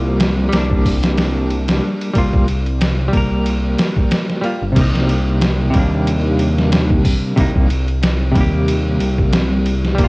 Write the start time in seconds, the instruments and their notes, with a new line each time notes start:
Already playing: detuned saw bass C2, clean electric guitar G3 A#3 F4
0.20 snare, ride
0.49 clean electric guitar G3, ride
0.53 detuned saw bass C2, clean electric guitar A#3, snare
0.58 clean electric guitar D4
0.71 kick
0.86 kick, open hi-hat
1.03 snare, ride
1.18 snare, ride
1.50 ride
1.68 snare, ride
2.01 ride
2.13 detuned saw bass C2, clean electric guitar G3 A#3, kick, ride
2.18 clean electric guitar F4
2.33 kick
2.48 ride
2.66 ride
2.81 snare, ride
3.08 clean electric guitar G3
3.13 detuned saw bass C2, clean electric guitar A#3, kick, ride
3.17 clean electric guitar A#4
3.46 ride
3.78 snare, ride
3.96 kick
4.11 snare, ride
4.29 snare
4.41 clean electric guitar G3 A#3, ride
4.46 clean electric guitar F4
4.62 detuned saw bass G1
4.72 clean electric guitar C3 G3
4.76 detuned saw bass C2, clean electric guitar A#3, kick, crash, ride
4.81 clean electric guitar D#4
4.95 snare
5.09 ride
5.41 snare, ride
5.70 clean electric guitar C3 G3, kick, ride
5.74 detuned saw bass D#2, clean electric guitar A#3
5.79 clean electric guitar D4
6.07 ride
6.39 ride
6.59 snare
6.72 snare, ride
6.90 kick
7.05 kick, open hi-hat
7.36 detuned saw bass C2, clean electric guitar C3 G3 A#3, kick, ride
7.41 clean electric guitar D#4
7.55 kick
7.70 ride
7.88 ride
8.03 snare, ride
8.32 detuned saw bass D#2, clean electric guitar C3 G3, kick, ride
8.38 clean electric guitar A#3 G4
8.68 ride
9.00 detuned saw bass C2, ride
9.18 kick
9.33 snare, ride
9.66 ride
9.85 snare
9.95 detuned saw bass C2, clean electric guitar G3, kick, ride
9.99 clean electric guitar A#3
10.04 clean electric guitar F4